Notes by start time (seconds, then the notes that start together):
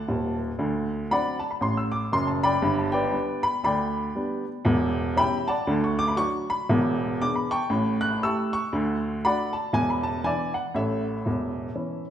Already playing: D5 F#5 A5
0.08 D#1 D#2
0.58 D2 D3
1.11 F#3 C4 D4 D5 F#5 B5
1.39 A5
1.51 B5
1.61 A1 A2 C6
1.77 E6
1.92 D6
2.12 F#1 F#2 C6
2.27 A5
2.43 D5 G5 B5
2.62 G1 G2
2.79 A5
2.92 B4 D5 G5
3.12 G3 B3 D4
3.43 B5
3.64 D2 D3 D5 G5 B5
4.15 G3 B3 D4
4.65 E1 E2
5.16 G3 C#4 E4 E5 G5 B5
5.48 D5 F#5 A5
5.67 D2 D3
5.84 C#6
5.99 D6
6.08 B5
6.17 F#3 D4 F#4 C#6
6.50 B5
6.69 E1 E2
7.21 B3 D4 G#4 D6
7.35 B5
7.51 G5 A5 C#6
7.70 A1 A2
8.01 F#6
8.23 A3 E4 G4 A5 C#6 E6
8.53 C#6
8.73 D2 D3
9.24 A3 D4 F#4 D5 F#5 B5
9.53 A5
9.73 E1 E2 G#5
9.90 B5
10.03 A5
10.24 E3 D4 E4 D5 E5 G#5
10.54 F#5
10.74 A1 A2 A4 C#5 E5
11.26 E1 E2
11.76 E3 C#4 E4